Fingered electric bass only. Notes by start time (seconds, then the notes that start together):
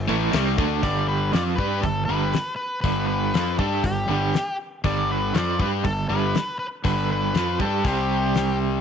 0.09 A1
0.34 C2
0.58 D2
0.83 G1
1.34 F2
1.58 G2
1.84 G1
2.09 G1
2.84 G1
3.34 F2
3.59 G2
3.84 G1
4.09 G1
4.84 G1
5.34 F2
5.59 G2
5.85 G1
6.10 G1
6.85 G1
7.34 F2
7.60 G2
7.85 C2